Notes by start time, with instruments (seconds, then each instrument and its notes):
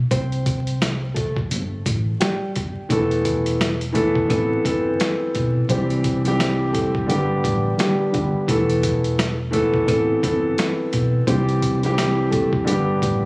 0.11 fingered electric bass C2, nylon-string guitar C4 C5, kick, closed hi-hat
0.32 closed hi-hat
0.46 kick, closed hi-hat
0.67 closed hi-hat
0.82 snare, closed hi-hat
1.14 nylon-string guitar A3 A4, kick, closed hi-hat
1.36 kick
1.51 fingered electric bass G1, closed hi-hat
1.86 fingered electric bass A1, kick, closed hi-hat
2.20 nylon-string guitar G3 G4, snare, closed hi-hat
2.56 fingered electric bass G1, kick, closed hi-hat
2.89 fingered electric bass E1, grand piano E3 A3 B3 A4, kick, closed hi-hat
3.11 closed hi-hat
3.25 kick, closed hi-hat
3.46 closed hi-hat
3.61 snare, closed hi-hat
3.81 closed hi-hat
3.93 grand piano E3 A3 B3 A4, kick, closed hi-hat
4.16 kick
4.28 fingered electric bass A1, grand piano E3 B3 C4 A4, kick, closed hi-hat
4.64 fingered electric bass G1, grand piano E3 B3 C4 A4, kick, closed hi-hat
5.00 snare, closed hi-hat
5.35 fingered electric bass B1, kick, closed hi-hat
5.69 fingered electric bass C2, grand piano E3 G3 C4 G4, nylon-string guitar C4 C5, kick, closed hi-hat
5.90 closed hi-hat
6.04 kick, closed hi-hat
6.25 grand piano E3 G3 C4 G4, closed hi-hat
6.40 snare, closed hi-hat
6.73 nylon-string guitar A3 A4, kick, closed hi-hat
6.95 kick
7.06 fingered electric bass G1, grand piano D3 G3 B3 G4, closed hi-hat
7.44 fingered electric bass A1, kick, closed hi-hat
7.77 grand piano D3 G3 B3 G4, nylon-string guitar G3 G4, snare, closed hi-hat
8.11 fingered electric bass G1, grand piano D3 G3 B3 G4, kick, closed hi-hat
8.48 fingered electric bass E1, grand piano E3 A3 B3 A4, kick, closed hi-hat
8.70 closed hi-hat
8.83 kick, closed hi-hat
9.04 closed hi-hat
9.19 snare, closed hi-hat
9.51 grand piano E3 A3 B3 A4, kick, closed hi-hat
9.74 kick
9.86 fingered electric bass A1, grand piano E3 B3 C4 A4, kick, closed hi-hat
10.22 fingered electric bass G1, grand piano E3 B3 C4 A4, kick, closed hi-hat
10.58 snare, closed hi-hat
10.93 fingered electric bass B1, kick, closed hi-hat
11.27 fingered electric bass C2, grand piano E3 G3 C4 G4, nylon-string guitar C4 C5, kick, closed hi-hat
11.49 closed hi-hat
11.62 kick, closed hi-hat
11.83 grand piano E3 G3 C4 G4, closed hi-hat
11.98 snare, closed hi-hat
12.31 nylon-string guitar A3 A4, kick, closed hi-hat
12.53 kick
12.64 fingered electric bass G1, grand piano D3 G3 B3 G4, closed hi-hat
13.02 fingered electric bass A1, kick, closed hi-hat